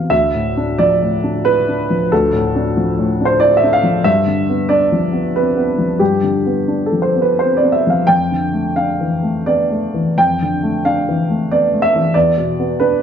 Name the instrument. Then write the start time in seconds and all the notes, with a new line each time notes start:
upright piano
Already playing: B2 E3 B3 C4 D4 F5
0.10 D2 E5
0.34 A2
0.57 D4
0.79 F3 D5
1.02 A2
1.24 D4
1.45 E4 B4
1.68 D4
1.90 F3
2.12 D2 A4
2.33 A2
2.56 D4
2.77 F3
2.99 A2
3.21 D4
3.25 C5
3.40 E4 D5
3.57 E5
3.63 D4
3.73 F5
3.83 F3
4.04 G2 E5
4.26 D3
4.49 B3
4.69 D4 D5
4.92 F3
5.12 B3
5.36 C4 B4
5.57 B3
5.78 F3
5.99 G2 G4
6.23 D3
6.46 B3
6.68 D4
6.86 A4
6.92 F3
7.02 C5
7.16 B3
7.22 B4
7.39 C4 C5
7.57 D5
7.63 B3
7.72 E5
7.87 F3 F5
8.07 F2 G5
8.31 D3
8.53 A3
8.76 D4 F5
9.01 E3
9.23 A3
9.46 B3 D5
9.71 A3
9.94 E3
10.18 F2 G5
10.42 D3
10.63 A3
10.85 D4 F5
11.09 E3
11.30 A3
11.51 B3 D5
11.73 A3
11.82 E5
11.96 E3
12.14 E2 D5
12.38 B2
12.59 B3
12.80 D4 B4